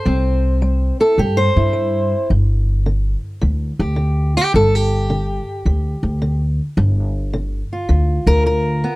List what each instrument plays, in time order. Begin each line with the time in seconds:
Already playing: steel-string acoustic guitar C5
0.05 upright bass C2, steel-string acoustic guitar C3 C4
0.62 steel-string acoustic guitar G3
1.00 steel-string acoustic guitar E4 A4
1.18 upright bass G2, steel-string acoustic guitar C3 G4
1.37 steel-string acoustic guitar C5
1.56 upright bass G2, steel-string acoustic guitar E4
1.73 steel-string acoustic guitar G3
2.30 upright bass G1, steel-string acoustic guitar G2
2.86 steel-string acoustic guitar D3
3.41 upright bass D2, steel-string acoustic guitar D3
3.79 upright bass D2, steel-string acoustic guitar G4
3.96 steel-string acoustic guitar D3
4.37 steel-string acoustic guitar G4
4.54 upright bass G1, steel-string acoustic guitar G2 A4
4.75 steel-string acoustic guitar G4
5.10 steel-string acoustic guitar D3
5.65 upright bass D2, steel-string acoustic guitar D3
6.03 upright bass D2
6.22 steel-string acoustic guitar D3
6.77 upright bass G1, steel-string acoustic guitar G2
7.33 steel-string acoustic guitar D3
7.73 steel-string acoustic guitar F4
7.89 upright bass D2, steel-string acoustic guitar D3
8.27 upright bass D2, steel-string acoustic guitar A#4
8.46 steel-string acoustic guitar D3 A#4
8.84 steel-string acoustic guitar B3